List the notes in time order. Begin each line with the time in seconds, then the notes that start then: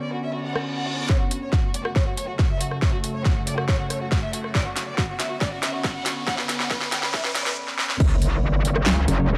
Already playing: D3 B3 C#4
0.02 D5
0.13 F#4
0.23 E5, reverse cymbal
0.34 F#4
0.45 F#5
0.56 F#4, cross-stick
0.66 F#4
0.77 F#5
0.88 F#4
0.98 F#4
1.09 F#2 C#3 A3 C#5, kick, snare, riser
1.20 F#4
1.31 F#4, closed hi-hat
1.42 C#5
1.53 F#4, kick, snare
1.63 F#4
1.74 D5, closed hi-hat
1.85 F#4, cross-stick
1.96 C#5, kick, snare
2.06 F#4
2.17 C#5, closed hi-hat
2.28 F#4
2.39 F#4, kick, snare
2.50 E5
2.60 F#4, closed hi-hat
2.71 F#4, cross-stick
2.82 C#5, kick, snare
2.93 F#4
3.03 F#4, closed hi-hat
3.14 C#5
3.25 F#4, kick, snare
3.36 F#4
3.47 D5, closed hi-hat
3.58 F#4, cross-stick
3.69 C#5, kick, snare
3.79 F#4
3.90 C#5, cross-stick, closed hi-hat
4.01 F#4
4.12 F#4, kick, snare
4.22 E5
4.33 F#4, closed hi-hat
4.44 F#4, cross-stick
4.55 D3 B3 C#4 D5, kick, snare
4.66 F#4
4.76 F#4, snare, closed hi-hat
4.87 D5
4.98 F#4, kick, snare
5.09 F#4
5.20 E5, snare, closed hi-hat
5.30 F#4
5.41 D5, kick, snare
5.52 F#4
5.63 E5, snare, closed hi-hat
5.73 F#4
5.84 F#4, kick, snare
5.95 F#5
6.06 F#4, snare, closed hi-hat
6.17 F#4
6.27 F#5, kick, snare
6.38 B4, snare
6.49 B4, snare, closed hi-hat
6.60 F#5, snare
6.71 B4, kick, snare
6.81 B4, snare
6.92 G5, snare, closed hi-hat
7.03 B4, snare
7.14 E5, kick, snare
7.25 B4, snare
7.35 D5, snare, closed hi-hat
7.46 B4, snare, closed hi-hat
7.68 snare
7.79 snare
7.89 snare
8.00 F#1 F#3 C#4 C#5, kick, crash, sub drop
8.22 closed hi-hat
8.43 G1
8.65 closed hi-hat
8.76 cross-stick
8.86 C#2, snare, clap
9.08 F#1, closed hi-hat
9.30 E1